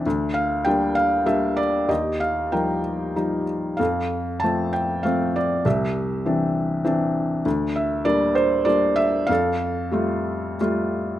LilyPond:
<<
  \new Staff \with { instrumentName = "Felt piano" } { \time 3/4 \key f \major \tempo 4 = 97 << { r8 f''8 g''8 f''8 e''8 d''8 | ees''8 f''8 g''4. r8 | f''4 a''8 g''8 f''8 d''8 | e''2 r4 |
r8 e''8 d''8 c''8 d''8 e''8 | f''2 r4 | } \\ { r2. | g'4 bes'4. r8 | a'4. r4. | g'2 r4 |
r2. | a'2 r4 | } >> }
  \new Staff \with { instrumentName = "Felt piano" } { \time 3/4 \key f \major d,4 <g bes d'>4 <g bes d'>4 | ees,4 <f g ees'>4 <f g ees'>4 | f,4 <f a c'>4 <f a c'>4 | c,4 <e c' d'>4 <e c' d'>4 |
d,4 <g bes d'>4 <g bes d'>4 | f,4 <g a f'>4 <g a f'>4 | }
>>